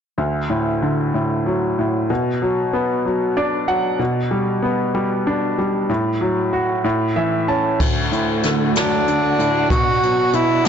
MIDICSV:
0, 0, Header, 1, 5, 480
1, 0, Start_track
1, 0, Key_signature, 2, "major"
1, 0, Tempo, 634249
1, 138, Time_signature, 6, 3, 24, 8
1, 8086, End_track
2, 0, Start_track
2, 0, Title_t, "Tenor saxophone"
2, 0, Program_c, 0, 66
2, 6625, Note_on_c, 0, 62, 61
2, 7313, Note_off_c, 0, 62, 0
2, 7344, Note_on_c, 0, 66, 69
2, 7829, Note_on_c, 0, 64, 62
2, 7840, Note_off_c, 0, 66, 0
2, 8074, Note_off_c, 0, 64, 0
2, 8086, End_track
3, 0, Start_track
3, 0, Title_t, "String section"
3, 0, Program_c, 1, 48
3, 5901, Note_on_c, 1, 57, 50
3, 5902, Note_on_c, 1, 66, 62
3, 5903, Note_on_c, 1, 50, 49
3, 5904, Note_on_c, 1, 38, 55
3, 7327, Note_off_c, 1, 57, 0
3, 7328, Note_off_c, 1, 50, 0
3, 7329, Note_off_c, 1, 38, 0
3, 7345, Note_on_c, 1, 59, 52
3, 7346, Note_on_c, 1, 62, 55
3, 7349, Note_on_c, 1, 47, 57
3, 8086, Note_off_c, 1, 47, 0
3, 8086, Note_off_c, 1, 59, 0
3, 8086, Note_off_c, 1, 62, 0
3, 8086, Note_off_c, 1, 66, 0
3, 8086, End_track
4, 0, Start_track
4, 0, Title_t, "Upright piano"
4, 0, Program_c, 2, 0
4, 134, Note_on_c, 2, 38, 36
4, 298, Control_c, 2, 64, 127
4, 376, Note_on_c, 2, 45, 31
4, 624, Note_on_c, 2, 50, 31
4, 852, Note_off_c, 2, 45, 0
4, 864, Note_on_c, 2, 45, 29
4, 1105, Note_on_c, 2, 54, 31
4, 1341, Note_off_c, 2, 45, 0
4, 1352, Note_on_c, 2, 45, 29
4, 1555, Note_off_c, 2, 38, 0
4, 1559, Note_off_c, 2, 50, 0
4, 1573, Note_off_c, 2, 54, 0
4, 1583, Note_off_c, 2, 45, 0
4, 1589, Note_on_c, 2, 47, 37
4, 1599, Control_c, 2, 64, 0
4, 1731, Control_c, 2, 64, 127
4, 1831, Note_on_c, 2, 54, 33
4, 2068, Note_on_c, 2, 59, 33
4, 2299, Note_off_c, 2, 54, 0
4, 2310, Note_on_c, 2, 54, 34
4, 2549, Note_on_c, 2, 74, 42
4, 2551, Note_on_c, 2, 62, 34
4, 2770, Note_off_c, 2, 74, 0
4, 2772, Note_off_c, 2, 54, 0
4, 2783, Note_on_c, 2, 54, 30
4, 2785, Note_on_c, 2, 78, 42
4, 2995, Note_off_c, 2, 47, 0
4, 2996, Note_off_c, 2, 59, 0
4, 3008, Note_off_c, 2, 78, 0
4, 3013, Note_off_c, 2, 62, 0
4, 3016, Note_off_c, 2, 54, 0
4, 3022, Note_on_c, 2, 47, 39
4, 3034, Control_c, 2, 64, 0
4, 3166, Control_c, 2, 64, 127
4, 3262, Note_on_c, 2, 55, 32
4, 3500, Note_on_c, 2, 59, 36
4, 3731, Note_off_c, 2, 55, 0
4, 3742, Note_on_c, 2, 55, 35
4, 3986, Note_on_c, 2, 62, 35
4, 4216, Note_off_c, 2, 55, 0
4, 4227, Note_on_c, 2, 55, 32
4, 4429, Note_off_c, 2, 47, 0
4, 4430, Note_off_c, 2, 59, 0
4, 4448, Note_off_c, 2, 62, 0
4, 4456, Note_off_c, 2, 55, 0
4, 4461, Note_on_c, 2, 45, 41
4, 4470, Control_c, 2, 64, 0
4, 4621, Control_c, 2, 64, 127
4, 4700, Note_on_c, 2, 54, 38
4, 4941, Note_on_c, 2, 66, 38
4, 5158, Note_off_c, 2, 45, 0
4, 5165, Note_off_c, 2, 54, 0
4, 5173, Note_off_c, 2, 66, 0
4, 5179, Note_on_c, 2, 45, 47
4, 5189, Control_c, 2, 64, 0
4, 5342, Control_c, 2, 64, 127
4, 5420, Note_on_c, 2, 76, 46
4, 5422, Note_on_c, 2, 52, 36
4, 5644, Note_off_c, 2, 76, 0
4, 5663, Note_on_c, 2, 81, 42
4, 5665, Note_on_c, 2, 61, 38
4, 5881, Note_off_c, 2, 45, 0
4, 5887, Note_off_c, 2, 81, 0
4, 5889, Note_off_c, 2, 52, 0
4, 5897, Note_off_c, 2, 61, 0
4, 5901, Note_on_c, 2, 38, 45
4, 5912, Control_c, 2, 64, 0
4, 6054, Control_c, 2, 64, 127
4, 6143, Note_on_c, 2, 45, 40
4, 6389, Note_on_c, 2, 50, 39
4, 6629, Note_on_c, 2, 54, 39
4, 6861, Note_off_c, 2, 50, 0
4, 6872, Note_on_c, 2, 50, 39
4, 7074, Note_off_c, 2, 45, 0
4, 7104, Note_on_c, 2, 45, 36
4, 7311, Note_off_c, 2, 38, 0
4, 7324, Note_off_c, 2, 54, 0
4, 7332, Note_off_c, 2, 50, 0
4, 7336, Note_off_c, 2, 45, 0
4, 7348, Note_on_c, 2, 47, 48
4, 7353, Control_c, 2, 64, 0
4, 7478, Control_c, 2, 64, 127
4, 7587, Note_on_c, 2, 54, 37
4, 7811, Note_off_c, 2, 47, 0
4, 7822, Note_on_c, 2, 47, 43
4, 8046, Note_off_c, 2, 54, 0
4, 8057, Note_on_c, 2, 54, 41
4, 8086, Note_off_c, 2, 47, 0
4, 8086, Note_off_c, 2, 54, 0
4, 8086, End_track
5, 0, Start_track
5, 0, Title_t, "Drums"
5, 5902, Note_on_c, 9, 49, 63
5, 5904, Note_on_c, 9, 36, 78
5, 5978, Note_off_c, 9, 49, 0
5, 5980, Note_off_c, 9, 36, 0
5, 6151, Note_on_c, 9, 42, 36
5, 6226, Note_off_c, 9, 42, 0
5, 6381, Note_on_c, 9, 42, 55
5, 6396, Note_on_c, 9, 38, 24
5, 6456, Note_off_c, 9, 42, 0
5, 6471, Note_off_c, 9, 38, 0
5, 6625, Note_on_c, 9, 42, 61
5, 6637, Note_on_c, 9, 38, 82
5, 6701, Note_off_c, 9, 42, 0
5, 6712, Note_off_c, 9, 38, 0
5, 6867, Note_on_c, 9, 42, 41
5, 6943, Note_off_c, 9, 42, 0
5, 7109, Note_on_c, 9, 42, 52
5, 7185, Note_off_c, 9, 42, 0
5, 7344, Note_on_c, 9, 36, 78
5, 7346, Note_on_c, 9, 42, 69
5, 7420, Note_off_c, 9, 36, 0
5, 7421, Note_off_c, 9, 42, 0
5, 7590, Note_on_c, 9, 42, 38
5, 7666, Note_off_c, 9, 42, 0
5, 7819, Note_on_c, 9, 42, 56
5, 7894, Note_off_c, 9, 42, 0
5, 8058, Note_on_c, 9, 42, 62
5, 8086, Note_off_c, 9, 42, 0
5, 8086, End_track
0, 0, End_of_file